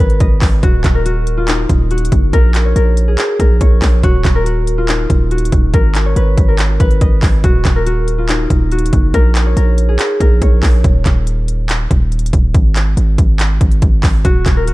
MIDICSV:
0, 0, Header, 1, 4, 480
1, 0, Start_track
1, 0, Key_signature, -6, "minor"
1, 0, Tempo, 425532
1, 711, Time_signature, 4, 2, 24, 8
1, 16621, End_track
2, 0, Start_track
2, 0, Title_t, "Harp"
2, 0, Program_c, 0, 46
2, 0, Note_on_c, 0, 63, 85
2, 0, Note_on_c, 0, 66, 82
2, 0, Note_on_c, 0, 71, 83
2, 0, Note_on_c, 0, 73, 70
2, 229, Note_on_c, 0, 75, 75
2, 708, Note_off_c, 0, 66, 0
2, 712, Note_on_c, 0, 66, 108
2, 880, Note_off_c, 0, 63, 0
2, 1071, Note_on_c, 0, 70, 76
2, 1139, Note_off_c, 0, 71, 0
2, 1185, Note_off_c, 0, 66, 0
2, 1189, Note_on_c, 0, 66, 88
2, 1309, Note_off_c, 0, 73, 0
2, 1550, Note_on_c, 0, 65, 70
2, 1618, Note_off_c, 0, 66, 0
2, 1669, Note_on_c, 0, 63, 84
2, 2153, Note_on_c, 0, 66, 84
2, 2220, Note_off_c, 0, 65, 0
2, 2241, Note_off_c, 0, 75, 0
2, 2626, Note_off_c, 0, 70, 0
2, 2631, Note_on_c, 0, 70, 111
2, 2992, Note_on_c, 0, 73, 73
2, 3107, Note_off_c, 0, 70, 0
2, 3111, Note_on_c, 0, 70, 80
2, 3471, Note_on_c, 0, 68, 72
2, 3826, Note_off_c, 0, 70, 0
2, 3831, Note_on_c, 0, 70, 77
2, 4068, Note_off_c, 0, 73, 0
2, 4072, Note_on_c, 0, 73, 76
2, 4548, Note_off_c, 0, 66, 0
2, 4553, Note_on_c, 0, 66, 116
2, 4719, Note_off_c, 0, 63, 0
2, 4906, Note_off_c, 0, 70, 0
2, 4910, Note_on_c, 0, 70, 86
2, 5027, Note_off_c, 0, 66, 0
2, 5031, Note_on_c, 0, 66, 86
2, 5390, Note_on_c, 0, 65, 72
2, 5457, Note_off_c, 0, 66, 0
2, 5509, Note_on_c, 0, 63, 86
2, 5992, Note_on_c, 0, 66, 82
2, 6036, Note_off_c, 0, 68, 0
2, 6060, Note_off_c, 0, 65, 0
2, 6229, Note_off_c, 0, 73, 0
2, 6468, Note_off_c, 0, 70, 0
2, 6472, Note_on_c, 0, 70, 104
2, 6834, Note_on_c, 0, 73, 70
2, 6954, Note_on_c, 0, 71, 75
2, 7022, Note_off_c, 0, 70, 0
2, 7312, Note_on_c, 0, 70, 75
2, 7380, Note_off_c, 0, 71, 0
2, 7672, Note_on_c, 0, 71, 83
2, 7739, Note_off_c, 0, 70, 0
2, 7911, Note_on_c, 0, 75, 74
2, 8389, Note_off_c, 0, 66, 0
2, 8393, Note_on_c, 0, 66, 111
2, 8559, Note_off_c, 0, 63, 0
2, 8752, Note_on_c, 0, 70, 78
2, 8820, Note_off_c, 0, 71, 0
2, 8866, Note_off_c, 0, 66, 0
2, 8871, Note_on_c, 0, 66, 91
2, 8990, Note_off_c, 0, 73, 0
2, 9230, Note_on_c, 0, 65, 68
2, 9298, Note_off_c, 0, 66, 0
2, 9349, Note_on_c, 0, 63, 83
2, 9833, Note_on_c, 0, 66, 81
2, 9901, Note_off_c, 0, 65, 0
2, 9923, Note_off_c, 0, 75, 0
2, 10307, Note_off_c, 0, 70, 0
2, 10311, Note_on_c, 0, 70, 115
2, 10672, Note_on_c, 0, 73, 71
2, 10786, Note_off_c, 0, 70, 0
2, 10791, Note_on_c, 0, 70, 81
2, 11151, Note_on_c, 0, 68, 74
2, 11506, Note_off_c, 0, 70, 0
2, 11511, Note_on_c, 0, 70, 79
2, 11748, Note_off_c, 0, 73, 0
2, 11752, Note_on_c, 0, 73, 75
2, 12399, Note_off_c, 0, 63, 0
2, 12582, Note_off_c, 0, 66, 0
2, 13715, Note_off_c, 0, 68, 0
2, 13904, Note_off_c, 0, 70, 0
2, 13909, Note_off_c, 0, 73, 0
2, 16072, Note_on_c, 0, 66, 111
2, 16432, Note_on_c, 0, 70, 79
2, 16546, Note_off_c, 0, 66, 0
2, 16551, Note_on_c, 0, 66, 87
2, 16621, Note_off_c, 0, 66, 0
2, 16621, Note_off_c, 0, 70, 0
2, 16621, End_track
3, 0, Start_track
3, 0, Title_t, "808-style bass"
3, 0, Program_c, 1, 38
3, 0, Note_on_c, 1, 32, 102
3, 221, Note_off_c, 1, 32, 0
3, 230, Note_on_c, 1, 32, 97
3, 461, Note_off_c, 1, 32, 0
3, 470, Note_on_c, 1, 32, 105
3, 701, Note_off_c, 1, 32, 0
3, 711, Note_on_c, 1, 27, 110
3, 941, Note_off_c, 1, 27, 0
3, 950, Note_on_c, 1, 27, 101
3, 1872, Note_off_c, 1, 27, 0
3, 1911, Note_on_c, 1, 27, 104
3, 2372, Note_off_c, 1, 27, 0
3, 2391, Note_on_c, 1, 30, 102
3, 2621, Note_off_c, 1, 30, 0
3, 2631, Note_on_c, 1, 34, 115
3, 3092, Note_off_c, 1, 34, 0
3, 3110, Note_on_c, 1, 34, 113
3, 3571, Note_off_c, 1, 34, 0
3, 3830, Note_on_c, 1, 34, 104
3, 4061, Note_off_c, 1, 34, 0
3, 4070, Note_on_c, 1, 34, 102
3, 4301, Note_off_c, 1, 34, 0
3, 4310, Note_on_c, 1, 34, 101
3, 4541, Note_off_c, 1, 34, 0
3, 4551, Note_on_c, 1, 27, 112
3, 4781, Note_off_c, 1, 27, 0
3, 4791, Note_on_c, 1, 27, 107
3, 5712, Note_off_c, 1, 27, 0
3, 5751, Note_on_c, 1, 27, 103
3, 6212, Note_off_c, 1, 27, 0
3, 6231, Note_on_c, 1, 27, 102
3, 6461, Note_off_c, 1, 27, 0
3, 6471, Note_on_c, 1, 32, 113
3, 6932, Note_off_c, 1, 32, 0
3, 6951, Note_on_c, 1, 32, 109
3, 7181, Note_off_c, 1, 32, 0
3, 7191, Note_on_c, 1, 32, 104
3, 7652, Note_off_c, 1, 32, 0
3, 7671, Note_on_c, 1, 32, 104
3, 7901, Note_off_c, 1, 32, 0
3, 7910, Note_on_c, 1, 32, 103
3, 8141, Note_off_c, 1, 32, 0
3, 8151, Note_on_c, 1, 32, 100
3, 8381, Note_off_c, 1, 32, 0
3, 8391, Note_on_c, 1, 27, 113
3, 8621, Note_off_c, 1, 27, 0
3, 8631, Note_on_c, 1, 27, 105
3, 9552, Note_off_c, 1, 27, 0
3, 9590, Note_on_c, 1, 27, 106
3, 10051, Note_off_c, 1, 27, 0
3, 10070, Note_on_c, 1, 30, 100
3, 10301, Note_off_c, 1, 30, 0
3, 10310, Note_on_c, 1, 34, 112
3, 10771, Note_off_c, 1, 34, 0
3, 10790, Note_on_c, 1, 34, 108
3, 11251, Note_off_c, 1, 34, 0
3, 11510, Note_on_c, 1, 34, 102
3, 11741, Note_off_c, 1, 34, 0
3, 11750, Note_on_c, 1, 34, 103
3, 11981, Note_off_c, 1, 34, 0
3, 11990, Note_on_c, 1, 34, 98
3, 12221, Note_off_c, 1, 34, 0
3, 12231, Note_on_c, 1, 27, 115
3, 12461, Note_off_c, 1, 27, 0
3, 12471, Note_on_c, 1, 27, 102
3, 13392, Note_off_c, 1, 27, 0
3, 13431, Note_on_c, 1, 27, 103
3, 13892, Note_off_c, 1, 27, 0
3, 13910, Note_on_c, 1, 27, 99
3, 14141, Note_off_c, 1, 27, 0
3, 14151, Note_on_c, 1, 32, 113
3, 14612, Note_off_c, 1, 32, 0
3, 14630, Note_on_c, 1, 32, 110
3, 14861, Note_off_c, 1, 32, 0
3, 14871, Note_on_c, 1, 32, 101
3, 15332, Note_off_c, 1, 32, 0
3, 15350, Note_on_c, 1, 32, 105
3, 15581, Note_off_c, 1, 32, 0
3, 15590, Note_on_c, 1, 32, 103
3, 15821, Note_off_c, 1, 32, 0
3, 15830, Note_on_c, 1, 32, 104
3, 16061, Note_off_c, 1, 32, 0
3, 16071, Note_on_c, 1, 27, 113
3, 16301, Note_off_c, 1, 27, 0
3, 16311, Note_on_c, 1, 27, 102
3, 16621, Note_off_c, 1, 27, 0
3, 16621, End_track
4, 0, Start_track
4, 0, Title_t, "Drums"
4, 111, Note_on_c, 9, 42, 46
4, 223, Note_off_c, 9, 42, 0
4, 229, Note_on_c, 9, 42, 78
4, 230, Note_on_c, 9, 36, 94
4, 342, Note_off_c, 9, 42, 0
4, 343, Note_off_c, 9, 36, 0
4, 470, Note_on_c, 9, 36, 93
4, 470, Note_on_c, 9, 39, 103
4, 470, Note_on_c, 9, 46, 74
4, 583, Note_off_c, 9, 36, 0
4, 583, Note_off_c, 9, 39, 0
4, 583, Note_off_c, 9, 46, 0
4, 710, Note_on_c, 9, 42, 72
4, 711, Note_on_c, 9, 36, 118
4, 823, Note_off_c, 9, 36, 0
4, 823, Note_off_c, 9, 42, 0
4, 950, Note_on_c, 9, 36, 97
4, 950, Note_on_c, 9, 39, 95
4, 950, Note_on_c, 9, 42, 80
4, 1063, Note_off_c, 9, 36, 0
4, 1063, Note_off_c, 9, 39, 0
4, 1063, Note_off_c, 9, 42, 0
4, 1192, Note_on_c, 9, 42, 77
4, 1305, Note_off_c, 9, 42, 0
4, 1431, Note_on_c, 9, 42, 76
4, 1544, Note_off_c, 9, 42, 0
4, 1669, Note_on_c, 9, 42, 83
4, 1671, Note_on_c, 9, 39, 114
4, 1782, Note_off_c, 9, 42, 0
4, 1784, Note_off_c, 9, 39, 0
4, 1910, Note_on_c, 9, 36, 87
4, 1912, Note_on_c, 9, 42, 76
4, 2023, Note_off_c, 9, 36, 0
4, 2025, Note_off_c, 9, 42, 0
4, 2151, Note_on_c, 9, 42, 46
4, 2231, Note_off_c, 9, 42, 0
4, 2231, Note_on_c, 9, 42, 61
4, 2311, Note_off_c, 9, 42, 0
4, 2311, Note_on_c, 9, 42, 76
4, 2391, Note_off_c, 9, 42, 0
4, 2391, Note_on_c, 9, 36, 95
4, 2391, Note_on_c, 9, 42, 79
4, 2503, Note_off_c, 9, 36, 0
4, 2504, Note_off_c, 9, 42, 0
4, 2631, Note_on_c, 9, 36, 113
4, 2631, Note_on_c, 9, 42, 69
4, 2744, Note_off_c, 9, 36, 0
4, 2744, Note_off_c, 9, 42, 0
4, 2871, Note_on_c, 9, 39, 97
4, 2872, Note_on_c, 9, 42, 80
4, 2984, Note_off_c, 9, 39, 0
4, 2984, Note_off_c, 9, 42, 0
4, 3113, Note_on_c, 9, 42, 76
4, 3226, Note_off_c, 9, 42, 0
4, 3352, Note_on_c, 9, 42, 77
4, 3465, Note_off_c, 9, 42, 0
4, 3589, Note_on_c, 9, 42, 80
4, 3591, Note_on_c, 9, 39, 115
4, 3702, Note_off_c, 9, 42, 0
4, 3704, Note_off_c, 9, 39, 0
4, 3830, Note_on_c, 9, 36, 89
4, 3832, Note_on_c, 9, 42, 77
4, 3943, Note_off_c, 9, 36, 0
4, 3945, Note_off_c, 9, 42, 0
4, 4070, Note_on_c, 9, 36, 90
4, 4070, Note_on_c, 9, 42, 80
4, 4183, Note_off_c, 9, 36, 0
4, 4183, Note_off_c, 9, 42, 0
4, 4311, Note_on_c, 9, 36, 95
4, 4311, Note_on_c, 9, 39, 103
4, 4311, Note_on_c, 9, 46, 78
4, 4423, Note_off_c, 9, 36, 0
4, 4424, Note_off_c, 9, 39, 0
4, 4424, Note_off_c, 9, 46, 0
4, 4551, Note_on_c, 9, 36, 114
4, 4551, Note_on_c, 9, 42, 71
4, 4663, Note_off_c, 9, 42, 0
4, 4664, Note_off_c, 9, 36, 0
4, 4791, Note_on_c, 9, 36, 95
4, 4791, Note_on_c, 9, 39, 99
4, 4792, Note_on_c, 9, 42, 77
4, 4903, Note_off_c, 9, 36, 0
4, 4904, Note_off_c, 9, 39, 0
4, 4904, Note_off_c, 9, 42, 0
4, 5033, Note_on_c, 9, 42, 74
4, 5146, Note_off_c, 9, 42, 0
4, 5272, Note_on_c, 9, 42, 76
4, 5384, Note_off_c, 9, 42, 0
4, 5509, Note_on_c, 9, 42, 82
4, 5511, Note_on_c, 9, 39, 115
4, 5622, Note_off_c, 9, 42, 0
4, 5624, Note_off_c, 9, 39, 0
4, 5751, Note_on_c, 9, 36, 92
4, 5752, Note_on_c, 9, 42, 79
4, 5864, Note_off_c, 9, 36, 0
4, 5865, Note_off_c, 9, 42, 0
4, 5991, Note_on_c, 9, 42, 47
4, 6071, Note_off_c, 9, 42, 0
4, 6071, Note_on_c, 9, 42, 60
4, 6151, Note_off_c, 9, 42, 0
4, 6151, Note_on_c, 9, 42, 75
4, 6231, Note_off_c, 9, 42, 0
4, 6231, Note_on_c, 9, 36, 93
4, 6231, Note_on_c, 9, 42, 79
4, 6343, Note_off_c, 9, 36, 0
4, 6343, Note_off_c, 9, 42, 0
4, 6470, Note_on_c, 9, 42, 71
4, 6471, Note_on_c, 9, 36, 112
4, 6583, Note_off_c, 9, 42, 0
4, 6584, Note_off_c, 9, 36, 0
4, 6711, Note_on_c, 9, 39, 95
4, 6711, Note_on_c, 9, 42, 77
4, 6823, Note_off_c, 9, 39, 0
4, 6824, Note_off_c, 9, 42, 0
4, 6952, Note_on_c, 9, 42, 74
4, 7065, Note_off_c, 9, 42, 0
4, 7191, Note_on_c, 9, 36, 92
4, 7191, Note_on_c, 9, 42, 75
4, 7304, Note_off_c, 9, 36, 0
4, 7304, Note_off_c, 9, 42, 0
4, 7429, Note_on_c, 9, 42, 83
4, 7431, Note_on_c, 9, 39, 111
4, 7542, Note_off_c, 9, 42, 0
4, 7543, Note_off_c, 9, 39, 0
4, 7671, Note_on_c, 9, 36, 91
4, 7671, Note_on_c, 9, 42, 79
4, 7784, Note_off_c, 9, 36, 0
4, 7784, Note_off_c, 9, 42, 0
4, 7791, Note_on_c, 9, 42, 46
4, 7904, Note_off_c, 9, 42, 0
4, 7909, Note_on_c, 9, 42, 80
4, 7910, Note_on_c, 9, 36, 94
4, 8022, Note_off_c, 9, 42, 0
4, 8023, Note_off_c, 9, 36, 0
4, 8150, Note_on_c, 9, 39, 104
4, 8150, Note_on_c, 9, 46, 77
4, 8151, Note_on_c, 9, 36, 94
4, 8263, Note_off_c, 9, 36, 0
4, 8263, Note_off_c, 9, 39, 0
4, 8263, Note_off_c, 9, 46, 0
4, 8391, Note_on_c, 9, 36, 119
4, 8391, Note_on_c, 9, 42, 74
4, 8503, Note_off_c, 9, 42, 0
4, 8504, Note_off_c, 9, 36, 0
4, 8631, Note_on_c, 9, 36, 94
4, 8631, Note_on_c, 9, 39, 98
4, 8631, Note_on_c, 9, 42, 79
4, 8743, Note_off_c, 9, 36, 0
4, 8743, Note_off_c, 9, 39, 0
4, 8744, Note_off_c, 9, 42, 0
4, 8872, Note_on_c, 9, 42, 76
4, 8985, Note_off_c, 9, 42, 0
4, 9111, Note_on_c, 9, 42, 73
4, 9224, Note_off_c, 9, 42, 0
4, 9349, Note_on_c, 9, 42, 81
4, 9351, Note_on_c, 9, 39, 114
4, 9462, Note_off_c, 9, 42, 0
4, 9463, Note_off_c, 9, 39, 0
4, 9590, Note_on_c, 9, 36, 85
4, 9592, Note_on_c, 9, 42, 75
4, 9703, Note_off_c, 9, 36, 0
4, 9705, Note_off_c, 9, 42, 0
4, 9831, Note_on_c, 9, 42, 46
4, 9910, Note_off_c, 9, 42, 0
4, 9910, Note_on_c, 9, 42, 62
4, 9990, Note_off_c, 9, 42, 0
4, 9990, Note_on_c, 9, 42, 75
4, 10070, Note_off_c, 9, 42, 0
4, 10070, Note_on_c, 9, 36, 94
4, 10070, Note_on_c, 9, 42, 78
4, 10183, Note_off_c, 9, 36, 0
4, 10183, Note_off_c, 9, 42, 0
4, 10310, Note_on_c, 9, 36, 114
4, 10310, Note_on_c, 9, 42, 72
4, 10422, Note_off_c, 9, 42, 0
4, 10423, Note_off_c, 9, 36, 0
4, 10550, Note_on_c, 9, 39, 99
4, 10551, Note_on_c, 9, 42, 79
4, 10663, Note_off_c, 9, 39, 0
4, 10663, Note_off_c, 9, 42, 0
4, 10792, Note_on_c, 9, 42, 76
4, 10905, Note_off_c, 9, 42, 0
4, 11031, Note_on_c, 9, 42, 76
4, 11144, Note_off_c, 9, 42, 0
4, 11269, Note_on_c, 9, 42, 81
4, 11270, Note_on_c, 9, 39, 112
4, 11381, Note_off_c, 9, 42, 0
4, 11383, Note_off_c, 9, 39, 0
4, 11510, Note_on_c, 9, 36, 86
4, 11512, Note_on_c, 9, 42, 78
4, 11623, Note_off_c, 9, 36, 0
4, 11624, Note_off_c, 9, 42, 0
4, 11750, Note_on_c, 9, 36, 93
4, 11750, Note_on_c, 9, 42, 82
4, 11862, Note_off_c, 9, 42, 0
4, 11863, Note_off_c, 9, 36, 0
4, 11991, Note_on_c, 9, 36, 93
4, 11991, Note_on_c, 9, 39, 104
4, 11991, Note_on_c, 9, 46, 75
4, 12103, Note_off_c, 9, 36, 0
4, 12103, Note_off_c, 9, 39, 0
4, 12103, Note_off_c, 9, 46, 0
4, 12231, Note_on_c, 9, 36, 112
4, 12231, Note_on_c, 9, 42, 73
4, 12343, Note_off_c, 9, 42, 0
4, 12344, Note_off_c, 9, 36, 0
4, 12471, Note_on_c, 9, 36, 93
4, 12471, Note_on_c, 9, 39, 95
4, 12471, Note_on_c, 9, 42, 80
4, 12583, Note_off_c, 9, 36, 0
4, 12583, Note_off_c, 9, 39, 0
4, 12584, Note_off_c, 9, 42, 0
4, 12713, Note_on_c, 9, 42, 74
4, 12825, Note_off_c, 9, 42, 0
4, 12952, Note_on_c, 9, 42, 80
4, 13065, Note_off_c, 9, 42, 0
4, 13189, Note_on_c, 9, 42, 84
4, 13191, Note_on_c, 9, 39, 112
4, 13302, Note_off_c, 9, 42, 0
4, 13304, Note_off_c, 9, 39, 0
4, 13431, Note_on_c, 9, 36, 89
4, 13432, Note_on_c, 9, 42, 80
4, 13543, Note_off_c, 9, 36, 0
4, 13545, Note_off_c, 9, 42, 0
4, 13671, Note_on_c, 9, 42, 45
4, 13751, Note_off_c, 9, 42, 0
4, 13751, Note_on_c, 9, 42, 60
4, 13831, Note_off_c, 9, 42, 0
4, 13831, Note_on_c, 9, 42, 79
4, 13910, Note_off_c, 9, 42, 0
4, 13910, Note_on_c, 9, 36, 96
4, 13910, Note_on_c, 9, 42, 80
4, 14023, Note_off_c, 9, 36, 0
4, 14023, Note_off_c, 9, 42, 0
4, 14151, Note_on_c, 9, 36, 118
4, 14151, Note_on_c, 9, 42, 71
4, 14263, Note_off_c, 9, 42, 0
4, 14264, Note_off_c, 9, 36, 0
4, 14390, Note_on_c, 9, 39, 97
4, 14391, Note_on_c, 9, 42, 83
4, 14503, Note_off_c, 9, 39, 0
4, 14504, Note_off_c, 9, 42, 0
4, 14632, Note_on_c, 9, 42, 75
4, 14745, Note_off_c, 9, 42, 0
4, 14871, Note_on_c, 9, 36, 93
4, 14871, Note_on_c, 9, 42, 76
4, 14984, Note_off_c, 9, 36, 0
4, 14984, Note_off_c, 9, 42, 0
4, 15109, Note_on_c, 9, 42, 82
4, 15111, Note_on_c, 9, 39, 110
4, 15222, Note_off_c, 9, 42, 0
4, 15223, Note_off_c, 9, 39, 0
4, 15350, Note_on_c, 9, 36, 90
4, 15351, Note_on_c, 9, 42, 79
4, 15463, Note_off_c, 9, 36, 0
4, 15464, Note_off_c, 9, 42, 0
4, 15470, Note_on_c, 9, 42, 48
4, 15583, Note_off_c, 9, 42, 0
4, 15589, Note_on_c, 9, 42, 81
4, 15590, Note_on_c, 9, 36, 93
4, 15702, Note_off_c, 9, 42, 0
4, 15703, Note_off_c, 9, 36, 0
4, 15830, Note_on_c, 9, 36, 96
4, 15830, Note_on_c, 9, 39, 105
4, 15830, Note_on_c, 9, 46, 75
4, 15943, Note_off_c, 9, 36, 0
4, 15943, Note_off_c, 9, 39, 0
4, 15943, Note_off_c, 9, 46, 0
4, 16071, Note_on_c, 9, 36, 120
4, 16071, Note_on_c, 9, 42, 73
4, 16184, Note_off_c, 9, 36, 0
4, 16184, Note_off_c, 9, 42, 0
4, 16311, Note_on_c, 9, 36, 93
4, 16311, Note_on_c, 9, 39, 96
4, 16311, Note_on_c, 9, 42, 81
4, 16423, Note_off_c, 9, 36, 0
4, 16424, Note_off_c, 9, 39, 0
4, 16424, Note_off_c, 9, 42, 0
4, 16553, Note_on_c, 9, 42, 76
4, 16621, Note_off_c, 9, 42, 0
4, 16621, End_track
0, 0, End_of_file